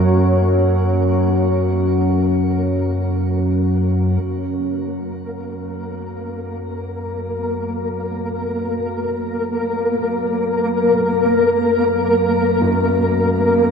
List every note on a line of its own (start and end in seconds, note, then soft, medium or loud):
0.00 4.21 F#2 medium
0.00 4.22 F#3 medium
0.00 4.22 A#3 medium
0.00 4.24 C#4 medium
0.00 4.23 F#4 medium
0.00 4.23 A#4 medium
0.00 4.24 C#5 medium
4.23 13.71 F#2 medium
4.23 13.71 F#3 medium
4.23 13.71 A#3 medium
4.23 13.71 A#4 medium
12.61 13.71 F#2 medium